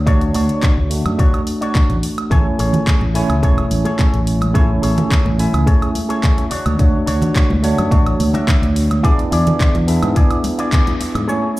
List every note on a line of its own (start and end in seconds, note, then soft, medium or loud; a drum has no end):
0.00 0.29 D2 loud
0.06 0.87 A3 medium
0.06 0.21 D4 loud
0.06 0.88 D4 medium
0.06 0.22 F#4 loud
0.06 0.88 F#4 medium
0.06 0.22 C#5 loud
0.06 0.88 C#5 medium
0.06 kick loud
0.06 closed hi-hat medium
0.21 closed hi-hat soft
0.34 0.46 D2 medium
0.34 0.77 D4 medium
0.34 0.78 F#4 medium
0.34 0.78 C#5 medium
0.34 open hi-hat loud
0.49 closed hi-hat soft
0.63 kick loud
0.63 clap loud
0.63 closed hi-hat medium
0.78 0.98 D2 medium
0.90 2.27 A3 medium
0.90 2.28 D4 medium
0.90 2.28 F#4 medium
0.90 open hi-hat loud
1.05 1.15 F#2 medium
1.05 closed hi-hat soft
1.05 high woodblock medium
1.18 1.40 D4 medium
1.18 1.40 F#4 medium
1.18 1.41 C#5 medium
1.18 kick loud
1.18 closed hi-hat medium
1.34 closed hi-hat soft
1.34 high woodblock medium
1.47 open hi-hat medium
1.61 1.96 D4 medium
1.61 1.97 F#4 medium
1.61 1.97 C#5 medium
1.61 closed hi-hat soft
1.75 kick loud
1.75 clap loud
1.75 closed hi-hat medium
1.90 2.00 A1 loud
1.90 closed hi-hat soft
2.03 open hi-hat loud
2.18 closed hi-hat soft
2.18 high woodblock medium
2.30 2.42 A1 medium
2.30 3.12 A3 medium
2.30 3.12 C#4 medium
2.30 3.12 E4 medium
2.30 2.46 G#4 loud
2.30 2.46 A4 medium
2.30 3.13 C#5 medium
2.30 2.46 C#5 loud
2.30 3.12 G#5 medium
2.30 kick loud
2.30 closed hi-hat medium
2.59 2.70 A1 medium
2.59 3.02 G#4 medium
2.59 3.02 A4 medium
2.59 3.02 C#5 medium
2.59 open hi-hat medium
2.73 closed hi-hat soft
2.73 low conga medium
2.87 kick loud
2.87 clap loud
2.87 closed hi-hat medium
3.01 3.22 A1 medium
3.01 muted conga soft
3.01 high conga medium
3.14 4.52 A3 loud
3.14 4.52 C#4 medium
3.14 4.52 E4 medium
3.14 4.53 C#5 loud
3.14 4.52 G#5 medium
3.14 open hi-hat loud
3.29 3.40 C#2 loud
3.29 closed hi-hat soft
3.29 muted conga soft
3.29 high woodblock medium
3.43 3.64 E1 medium
3.43 3.64 G#4 medium
3.43 3.65 A4 medium
3.43 3.65 C#5 medium
3.43 kick loud
3.43 closed hi-hat medium
3.58 closed hi-hat soft
3.58 high woodblock medium
3.71 3.82 A1 medium
3.71 open hi-hat loud
3.71 high conga medium
3.85 4.20 G#4 medium
3.85 4.20 A4 medium
3.85 4.21 C#5 medium
3.85 closed hi-hat soft
3.85 muted conga medium
3.99 kick loud
3.99 clap loud
3.99 closed hi-hat medium
4.14 4.78 A1 loud
4.14 closed hi-hat soft
4.27 open hi-hat medium
4.41 closed hi-hat soft
4.41 high conga medium
4.41 high woodblock medium
4.54 5.36 A3 medium
4.54 5.36 C#4 medium
4.54 5.36 E4 medium
4.54 4.69 G#4 loud
4.54 4.70 A4 medium
4.54 4.70 C#5 loud
4.54 5.37 C#5 medium
4.54 5.36 G#5 medium
4.54 kick loud
4.54 closed hi-hat medium
4.82 4.94 A1 medium
4.82 5.25 G#4 medium
4.82 5.26 A4 medium
4.82 5.26 C#5 medium
4.82 open hi-hat medium
4.98 closed hi-hat soft
4.98 low conga medium
5.11 kick loud
5.11 clap loud
5.11 closed hi-hat medium
5.26 5.46 A1 medium
5.26 muted conga medium
5.26 high conga medium
5.38 6.49 A3 medium
5.38 6.50 C#4 medium
5.38 6.50 E4 medium
5.38 6.50 E5 medium
5.38 6.50 G#5 medium
5.38 open hi-hat medium
5.53 5.64 C#2 loud
5.53 closed hi-hat soft
5.53 muted conga soft
5.53 high woodblock medium
5.66 5.88 G#4 medium
5.66 5.89 A4 medium
5.66 5.89 C#5 medium
5.66 kick loud
5.66 closed hi-hat medium
5.82 closed hi-hat soft
5.82 high woodblock medium
5.95 open hi-hat medium
5.95 high conga medium
6.09 6.44 G#4 medium
6.09 6.45 A4 medium
6.09 6.45 C#5 medium
6.09 closed hi-hat medium
6.23 kick loud
6.23 clap loud
6.23 closed hi-hat medium
6.38 closed hi-hat soft
6.38 muted conga medium
6.50 6.96 D4 medium
6.50 6.97 F#4 medium
6.50 6.97 C#5 medium
6.50 muted fingered electric bass stroke soft
6.50 open hi-hat loud
6.66 6.76 D2 medium
6.66 closed hi-hat soft
6.66 high conga medium
6.66 high woodblock medium
6.78 6.90 D2 medium
6.78 7.60 A3 medium
6.78 7.61 D4 medium
6.78 7.61 F#4 medium
6.78 7.61 C#5 medium
6.78 kick loud
6.78 closed hi-hat medium
7.06 7.18 D2 medium
7.06 7.50 D4 medium
7.06 7.50 F#4 medium
7.06 7.50 C#5 medium
7.06 open hi-hat loud
7.22 closed hi-hat medium
7.22 low conga medium
7.35 kick loud
7.35 clap loud
7.35 closed hi-hat medium
7.50 7.71 D2 medium
7.50 muted conga medium
7.50 high conga medium
7.62 9.00 A3 medium
7.62 9.01 D4 medium
7.62 9.01 F#4 medium
7.62 9.01 C#5 loud
7.62 open hi-hat medium
7.78 7.88 F#2 medium
7.78 closed hi-hat medium
7.78 muted conga medium
7.78 high woodblock medium
7.91 8.13 A1 medium
7.91 8.13 D4 medium
7.91 8.13 F#4 medium
7.91 8.13 C#5 medium
7.91 kick loud
7.91 closed hi-hat medium
8.06 closed hi-hat soft
8.06 high woodblock medium
8.20 8.31 D2 medium
8.20 open hi-hat medium
8.20 high conga medium
8.33 8.69 D4 medium
8.33 8.69 F#4 medium
8.33 8.70 E5 medium
8.33 closed hi-hat medium
8.33 muted conga medium
8.48 kick loud
8.48 clap loud
8.48 closed hi-hat medium
8.62 8.98 D2 loud
8.62 closed hi-hat soft
8.76 open hi-hat loud
8.90 closed hi-hat medium
8.90 high conga medium
8.90 high woodblock medium
9.03 9.85 B3 medium
9.03 9.85 D4 medium
9.03 9.18 E4 loud
9.03 9.85 E4 medium
9.03 9.19 G#4 loud
9.03 9.85 G#4 medium
9.03 9.19 D5 loud
9.03 9.86 D5 medium
9.03 kick loud
9.03 closed hi-hat medium
9.19 closed hi-hat soft
9.31 9.43 E2 medium
9.31 9.74 E4 medium
9.31 9.75 G#4 medium
9.31 9.75 D5 medium
9.31 open hi-hat loud
9.47 closed hi-hat medium
9.47 low conga medium
9.60 kick loud
9.60 clap loud
9.60 closed hi-hat medium
9.75 9.95 E2 loud
9.75 closed hi-hat soft
9.75 muted conga soft
9.75 high conga medium
9.87 11.25 B3 medium
9.87 11.25 D4 medium
9.87 11.25 E4 medium
9.87 11.25 G#4 medium
9.87 11.25 E5 medium
9.87 open hi-hat loud
10.03 10.13 G#2 loud
10.03 closed hi-hat medium
10.03 muted conga medium
10.03 high woodblock medium
10.15 10.37 E4 medium
10.15 10.38 G#4 medium
10.15 10.38 D5 medium
10.15 kick loud
10.15 closed hi-hat medium
10.31 closed hi-hat soft
10.31 high woodblock medium
10.44 open hi-hat medium
10.44 muted conga medium
10.44 high conga medium
10.58 10.93 E4 medium
10.58 10.94 G#4 medium
10.58 10.94 D5 medium
10.58 closed hi-hat medium
10.72 kick loud
10.72 clap loud
10.72 closed hi-hat medium
10.87 closed hi-hat soft
10.87 muted conga medium
11.00 muted fingered electric bass stroke soft
11.00 open hi-hat loud
11.15 11.25 G#2 medium
11.15 closed hi-hat medium
11.15 high conga medium
11.15 high woodblock medium
11.27 11.60 A3 medium
11.27 11.60 C#4 medium
11.27 11.60 E4 medium
11.27 11.49 G#4 medium
11.27 11.50 A4 medium
11.27 11.50 C#5 loud
11.27 11.60 C#5 medium
11.27 11.60 G#5 medium
11.27 shaker soft